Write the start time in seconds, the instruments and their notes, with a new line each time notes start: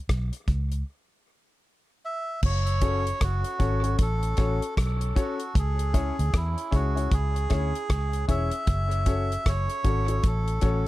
0.09 fingered electric bass B1, kick, cross-stick, closed hi-hat
0.33 closed hi-hat
0.48 fingered electric bass C#2, kick, closed hi-hat
0.72 closed hi-hat
2.05 melodica E5
2.43 fingered electric bass F#1, melodica C#5, kick, crash
2.67 closed hi-hat
2.81 grand piano C#4 F#4 A4 C#5, kick, closed hi-hat
3.07 closed hi-hat
3.21 fingered electric bass F#1, melodica F#4, kick, cross-stick, closed hi-hat
3.44 closed hi-hat
3.59 fingered electric bass G#1, grand piano C#4 F#4 A4 C#5, kick, closed hi-hat
3.83 grand piano C#4 F#4 A4 C#5, closed hi-hat
3.99 fingered electric bass A1, melodica A4, kick, closed hi-hat
4.23 closed hi-hat
4.37 fingered electric bass A1, grand piano C#4 F#4 A4 C#5, kick, cross-stick, closed hi-hat
4.62 closed hi-hat
4.77 fingered electric bass B1, kick, cross-stick, closed hi-hat
5.01 closed hi-hat
5.16 grand piano C#4 F#4 A4 C#5, kick, closed hi-hat
5.21 melodica F#4
5.40 closed hi-hat
5.55 fingered electric bass C#2, melodica G#4, kick, closed hi-hat
5.79 closed hi-hat
5.94 grand piano C#4 E4 G#4 C#5, kick, closed hi-hat
6.19 fingered electric bass D2, closed hi-hat
6.34 fingered electric bass E2, melodica E4, kick, cross-stick, closed hi-hat
6.58 closed hi-hat
6.71 fingered electric bass C#2, grand piano C#4 E4 G#4 C#5, melodica F#4, kick, closed hi-hat
6.95 grand piano C#4 E4 G#4 C#5, closed hi-hat
7.12 fingered electric bass C#2, melodica G#4, kick, closed hi-hat
7.36 closed hi-hat
7.50 fingered electric bass D2, grand piano C#4 E4 G#4 C#5, kick, cross-stick, closed hi-hat
7.75 closed hi-hat
7.90 fingered electric bass C#2, kick, cross-stick, closed hi-hat
8.13 closed hi-hat
8.28 fingered electric bass E1, grand piano C#4 E4 G#4 C#5, melodica E5, kick, closed hi-hat
8.51 closed hi-hat
8.67 fingered electric bass F#1, kick, closed hi-hat
8.91 closed hi-hat
9.06 grand piano C#4 F#4 A4 C#5, kick, closed hi-hat
9.32 closed hi-hat
9.46 fingered electric bass F#1, melodica C#5, kick, cross-stick, closed hi-hat
9.69 closed hi-hat
9.84 fingered electric bass G#1, grand piano C#4 F#4 A4 C#5, kick, closed hi-hat
10.08 grand piano C#4 F#4 A4 C#5, closed hi-hat
10.24 fingered electric bass A1, melodica A4, kick, closed hi-hat
10.48 closed hi-hat
10.61 fingered electric bass A1, grand piano C#4 F#4 A4 C#5, kick, closed hi-hat